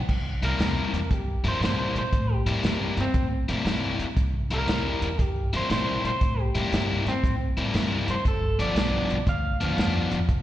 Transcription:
0.09 0.30 C2 medium
0.09 kick medium
0.09 crash medium
0.42 0.53 C2 medium
0.42 0.59 C3 medium
0.42 0.59 G3 medium
0.42 0.60 A#3 medium
0.42 0.60 E4 medium
0.42 1.13 A#4 medium
0.42 closed hi-hat medium
0.59 0.80 E2 medium
0.59 0.99 C3 medium
0.59 0.99 G3 medium
0.59 0.99 A#3 medium
0.59 0.99 E4 medium
0.59 snare loud
0.59 closed hi-hat medium
0.93 1.04 E2 medium
0.93 closed hi-hat medium
1.11 1.32 G2 medium
1.11 1.45 G4 medium
1.11 kick loud
1.11 closed hi-hat medium
1.44 1.55 G2 medium
1.44 1.60 C3 medium
1.44 1.61 G3 medium
1.44 1.61 A#3 medium
1.44 1.62 E4 medium
1.44 closed hi-hat medium
1.48 1.63 C5 medium
1.60 1.82 A#2 medium
1.60 2.01 C3 medium
1.60 2.01 G3 medium
1.60 2.01 A#3 medium
1.60 2.01 E4 medium
1.60 snare medium
1.60 closed hi-hat medium
1.65 1.96 C5 medium
1.95 2.06 A#2 medium
1.95 2.33 C5 medium
1.95 closed hi-hat medium
2.13 2.34 A2 loud
2.13 kick loud
2.13 closed hi-hat medium
2.33 2.97 G4 medium
2.46 2.57 A2 medium
2.46 2.62 C3 medium
2.46 2.63 G3 medium
2.46 2.63 A#3 medium
2.46 2.64 E4 loud
2.46 closed hi-hat medium
2.63 2.85 G2 medium
2.63 3.03 C3 medium
2.63 3.03 G3 medium
2.63 3.03 A#3 medium
2.63 3.03 E4 medium
2.63 snare loud
2.63 closed hi-hat medium
2.97 3.08 G2 medium
2.97 3.27 C4 medium
2.97 snare soft
2.97 closed hi-hat medium
3.14 3.36 A2 medium
3.14 kick loud
3.14 closed hi-hat medium
3.48 3.59 A2 medium
3.48 3.65 C3 medium
3.48 3.65 G3 medium
3.48 3.65 A#3 medium
3.48 3.66 E4 medium
3.48 closed hi-hat medium
3.65 3.87 G2 loud
3.65 4.05 C3 medium
3.65 4.05 G3 medium
3.65 4.05 A#3 medium
3.65 4.05 E4 medium
3.65 snare medium
3.65 closed hi-hat medium
3.99 4.10 G2 medium
3.99 closed hi-hat medium
4.17 4.38 C2 medium
4.17 kick loud
4.17 closed hi-hat medium
4.50 4.61 C2 medium
4.50 4.67 C3 medium
4.50 4.67 G3 medium
4.50 4.68 A#3 medium
4.50 4.68 E4 loud
4.50 5.21 A#4 medium
4.50 closed hi-hat medium
4.67 4.89 E2 medium
4.67 5.07 C3 medium
4.67 5.07 G3 medium
4.67 5.08 A#3 medium
4.67 5.08 E4 medium
4.67 snare loud
4.67 closed hi-hat medium
5.01 5.12 E2 medium
5.01 closed hi-hat medium
5.19 5.40 G2 medium
5.19 5.53 G4 medium
5.19 kick loud
5.19 closed hi-hat medium
5.53 5.64 G2 medium
5.53 5.69 C3 medium
5.53 5.70 G3 medium
5.53 5.70 A#3 medium
5.53 5.70 E4 medium
5.53 5.71 C5 medium
5.53 closed hi-hat soft
5.70 5.91 A#2 medium
5.70 6.09 C3 medium
5.70 6.10 G3 medium
5.70 6.10 A#3 medium
5.70 6.10 E4 medium
5.70 6.04 C5 medium
5.70 snare medium
5.70 closed hi-hat medium
6.04 6.15 A#2 medium
6.04 6.40 C5 medium
6.04 closed hi-hat medium
6.21 6.42 A2 medium
6.21 kick loud
6.21 closed hi-hat medium
6.40 7.05 G4 medium
6.55 6.66 A2 medium
6.55 6.71 C3 medium
6.55 6.72 G3 medium
6.55 6.72 A#3 medium
6.55 6.72 E4 medium
6.55 closed hi-hat medium
6.72 6.93 G2 medium
6.72 7.11 C3 medium
6.72 7.12 G3 medium
6.72 7.12 A#3 medium
6.72 7.12 E4 medium
6.72 snare medium
6.72 closed hi-hat medium
7.05 7.16 G2 medium
7.05 7.35 C4 medium
7.05 snare soft
7.05 closed hi-hat medium
7.24 7.45 A2 medium
7.24 kick loud
7.24 closed hi-hat medium
7.57 7.68 A2 medium
7.57 7.73 C3 medium
7.57 7.74 G3 medium
7.57 7.74 A#3 medium
7.57 7.74 E4 medium
7.57 closed hi-hat medium
7.74 7.95 G2 loud
7.74 8.13 C3 medium
7.74 8.14 G3 medium
7.74 8.14 A#3 medium
7.74 8.14 E4 medium
7.74 snare medium
7.74 closed hi-hat medium
8.08 8.19 G2 medium
8.08 8.26 C5 medium
8.08 closed hi-hat medium
8.25 8.46 G1 medium
8.25 8.59 A4 medium
8.25 kick loud
8.25 closed hi-hat medium
8.59 8.69 G1 medium
8.59 8.76 G2 medium
8.59 8.76 F3 medium
8.59 8.77 B3 medium
8.59 8.76 D4 medium
8.59 9.26 D5 medium
8.59 closed hi-hat medium
8.75 8.97 B1 medium
8.75 9.16 G2 medium
8.75 9.16 F3 medium
8.75 9.16 B3 medium
8.75 9.16 D4 medium
8.75 snare loud
8.75 closed hi-hat medium
9.09 9.20 B1 medium
9.09 closed hi-hat medium
9.27 9.48 D2 medium
9.27 10.27 F5 medium
9.27 kick loud
9.27 closed hi-hat medium
9.61 9.71 D2 medium
9.61 9.77 G2 medium
9.61 9.78 F3 medium
9.61 9.78 B3 medium
9.61 9.78 D4 medium
9.61 closed hi-hat medium
9.78 9.99 F2 medium
9.78 10.17 G2 medium
9.78 10.17 F3 medium
9.78 10.18 B3 medium
9.78 10.18 D4 medium
9.78 snare medium
9.78 closed hi-hat medium
10.11 10.30 F2 medium
10.11 closed hi-hat medium
10.29 10.42 F1 medium
10.29 kick loud
10.29 closed hi-hat medium

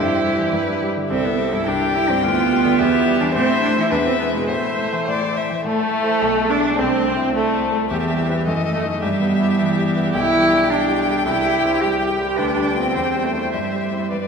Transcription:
0.00 0.51 G2 medium
0.00 0.80 E4 medium
0.00 0.90 G4 soft
0.00 0.53 C5 medium
0.10 0.33 C4 soft
0.24 0.47 G3 soft
0.38 0.53 E3 soft
0.53 1.09 G2 soft
0.53 0.90 B4 soft
0.67 0.90 D4 soft
0.82 1.05 G3 soft
0.97 1.11 D3 soft
1.10 1.66 C2 soft
1.10 1.26 C4 medium
1.10 1.69 A4 soft
1.10 1.63 E5 soft
1.25 1.40 B3 medium
1.25 1.47 E4 soft
1.38 1.62 G3 soft
1.38 1.55 C4 medium
1.53 1.76 G2 soft
1.53 1.68 E4 medium
1.67 2.22 C2 soft
1.67 1.97 D4 medium
1.67 2.25 G4 soft
1.67 2.77 G5 medium
1.81 2.04 E4 soft
1.95 2.18 G3 soft
1.95 2.12 E4 medium
2.10 2.23 G2 soft
2.10 2.24 C4 medium
2.23 2.78 D2 medium
2.23 3.22 B3 medium
2.23 2.80 F4 medium
2.38 2.60 F4 soft
2.51 2.74 G3 soft
2.65 2.79 D3 soft
2.78 3.33 E2 medium
2.78 3.34 G4 medium
2.78 3.34 E5 medium
2.93 3.15 E4 soft
3.08 3.29 G3 soft
3.21 3.35 E3 soft
3.21 3.33 D4 medium
3.34 3.90 A2 medium
3.34 3.62 C4 medium
3.34 3.93 C5 medium
3.34 3.87 E5 medium
3.50 3.72 E4 soft
3.62 3.86 A3 soft
3.62 3.76 D4 medium
3.77 3.92 E3 soft
3.77 3.90 E4 medium
3.91 4.48 E2 medium
3.91 3.97 D4 medium
3.91 4.49 B4 medium
3.91 4.48 E5 medium
4.06 4.19 C4 medium
4.06 4.29 E4 soft
4.19 4.43 G#3 soft
4.19 4.25 B3 medium
4.34 4.49 B2 soft
4.34 4.50 G#3 medium
4.48 5.06 A2 soft
4.48 5.36 A3 medium
4.48 5.44 C5 soft
4.48 5.00 E5 soft
4.64 4.87 E4 soft
4.79 5.02 A3 soft
4.93 5.16 E3 soft
5.07 5.63 A2 soft
5.07 5.38 D5 medium
5.21 5.45 E4 soft
5.36 5.59 A3 soft
5.36 5.65 E5 soft
5.50 5.65 E3 soft
5.64 6.20 A2 medium
5.64 6.51 A3 medium
5.64 6.52 A3 medium
5.83 6.13 A3 soft
6.02 6.19 E4 soft
6.02 6.20 C5 soft
6.22 6.77 B1 medium
6.41 6.71 G#3 soft
6.50 6.78 D4 medium
6.50 6.80 D4 medium
6.50 6.81 D4 medium
6.60 6.77 D4 soft
6.60 6.77 D5 soft
6.78 7.88 C2 medium
6.78 7.34 C4 medium
6.78 7.35 C4 medium
6.98 7.28 A3 soft
7.17 7.46 E4 soft
7.35 7.90 A3 medium
7.35 7.65 A3 soft
7.35 7.90 A3 medium
7.54 7.84 C5 soft
7.73 7.91 A3 soft
7.91 8.45 E2 medium
7.91 8.73 E3 medium
7.91 8.43 G4 soft
7.91 8.43 E5 soft
8.10 8.40 G3 soft
8.29 8.45 E4 soft
8.29 8.46 B4 soft
8.47 9.01 F#2 medium
8.47 8.99 A4 soft
8.47 8.99 D#5 medium
8.66 8.96 A3 soft
8.74 8.82 A3 medium
8.85 9.01 D#4 soft
8.85 9.01 A4 soft
9.02 10.11 G2 medium
9.02 9.60 G3 medium
9.02 11.22 G4 medium
9.02 10.11 E5 medium
9.21 9.51 B3 soft
9.40 9.70 E4 soft
9.59 10.14 E3 medium
9.59 9.88 B3 soft
9.77 10.07 G4 soft
9.96 10.15 B3 soft
10.14 11.23 B1 medium
10.14 10.72 E4 medium
10.14 12.34 G5 medium
10.33 10.63 G3 soft
10.53 10.82 D4 soft
10.71 11.01 G3 soft
10.71 11.26 D4 medium
10.89 11.19 G4 soft
11.08 11.26 G3 soft
11.26 12.35 C2 medium
11.26 11.84 E4 medium
11.26 12.34 G4 medium
11.45 11.75 G3 soft
11.64 11.94 C4 soft
11.82 12.13 G3 soft
11.82 12.39 G4 medium
12.01 12.31 G4 soft
12.20 12.38 G3 soft
12.38 12.93 D2 medium
12.38 12.80 D4 medium
12.38 12.90 B4 soft
12.38 13.49 G5 medium
12.57 12.87 G3 soft
12.76 12.93 B3 soft
12.76 12.93 F4 soft
12.81 13.25 C4 medium
12.95 13.51 E2 soft
12.95 14.07 C5 soft
13.15 13.45 G3 soft
13.23 13.54 A3 medium
13.34 13.51 C4 soft
13.34 13.52 E4 soft
13.52 14.10 G2 soft
13.52 14.28 G3 soft
13.52 14.08 E5 soft
13.74 14.04 G3 soft
13.93 14.10 C4 soft
13.93 14.10 E4 soft
14.11 14.28 G2 soft
14.11 14.28 B4 soft
14.11 14.28 D5 soft

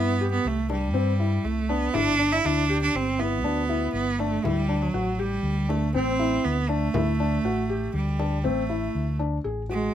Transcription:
0.00 0.38 G2 medium
0.00 0.30 B3 medium
0.00 0.12 E4 medium
0.21 0.54 G4 medium
0.32 0.49 B3 medium
0.45 0.94 C2 medium
0.45 0.70 A3 medium
0.69 1.46 G3 medium
0.69 0.87 D4 medium
0.69 frame drum soft
0.94 1.38 G2 loud
0.94 1.11 C4 medium
1.20 1.54 E4 medium
1.44 1.88 C2 medium
1.44 1.71 A3 medium
1.69 1.96 B3 medium
1.69 1.86 D4 medium
1.93 2.38 G1 medium
1.93 2.34 D4 loud
1.93 2.11 E4 medium
1.93 frame drum medium
2.19 2.36 D4 medium
2.32 2.47 E4 medium
2.45 2.88 D2 medium
2.45 2.82 D4 medium
2.45 2.62 E4 medium
2.69 3.03 G4 medium
2.82 2.97 D4 medium
2.95 3.44 G1 medium
2.95 3.21 C4 medium
3.19 3.93 B3 medium
3.19 3.36 E4 medium
3.19 frame drum soft
3.44 3.87 D2 medium
3.44 3.61 D4 medium
3.69 4.03 E4 medium
3.94 4.37 G1 medium
3.94 4.20 B3 medium
4.19 4.46 A3 medium
4.19 4.37 D4 medium
4.44 4.88 D2 medium
4.44 4.83 G3 medium
4.44 4.61 E4 medium
4.44 frame drum medium
4.69 4.86 D4 medium
4.82 5.21 F#3 medium
4.94 5.37 A1 medium
4.94 5.11 F#4 medium
5.19 5.71 G3 medium
5.19 5.53 G4 medium
5.43 5.96 D2 medium
5.69 5.94 A3 medium
5.69 5.86 D4 medium
5.69 frame drum soft
5.94 6.38 A1 loud
5.94 6.11 C4 medium
5.94 6.46 C4 medium
6.19 6.53 E4 medium
6.44 6.88 D2 medium
6.44 6.70 B3 medium
6.69 7.94 A3 medium
6.69 6.86 D4 medium
6.94 7.38 D2 medium
6.94 7.11 E4 medium
6.94 frame drum medium
7.20 7.37 D4 medium
7.44 7.88 A1 medium
7.44 7.62 F#4 medium
7.69 8.03 G4 medium
7.94 8.46 D2 medium
7.94 8.46 G3 medium
8.19 8.36 D4 medium
8.19 frame drum soft
8.44 8.88 A1 loud
8.44 9.20 A3 medium
8.44 8.61 C4 medium
8.44 frame drum soft
8.69 9.04 E4 medium
8.69 frame drum soft
8.95 9.38 D2 medium
9.19 9.37 D4 medium
9.44 9.88 A1 medium
9.44 9.62 G#4 medium
9.69 9.94 G#3 medium
9.69 9.94 F#4 medium

